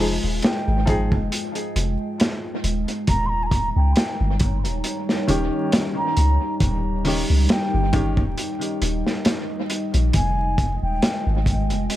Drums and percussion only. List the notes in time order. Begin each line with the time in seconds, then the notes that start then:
0.00 open hi-hat
0.42 snare, closed hi-hat
0.87 kick, closed hi-hat
1.12 kick
1.32 closed hi-hat
1.55 closed hi-hat
1.76 closed hi-hat
2.20 snare, closed hi-hat
2.64 closed hi-hat
2.88 closed hi-hat
3.07 kick, closed hi-hat
3.51 kick, closed hi-hat
3.96 snare, closed hi-hat
4.40 kick, closed hi-hat
4.65 closed hi-hat
4.84 closed hi-hat
5.09 snare
5.28 closed hi-hat
5.72 snare, closed hi-hat
6.17 closed hi-hat
6.60 kick, closed hi-hat
7.05 open hi-hat
7.49 snare, closed hi-hat
7.93 kick, closed hi-hat
8.17 kick
8.38 closed hi-hat
8.61 closed hi-hat
8.82 closed hi-hat
9.06 snare
9.25 snare, closed hi-hat
9.70 closed hi-hat
9.94 closed hi-hat
10.13 kick, closed hi-hat
10.58 kick, closed hi-hat
11.02 snare, closed hi-hat
11.46 kick, closed hi-hat
11.70 closed hi-hat
11.90 closed hi-hat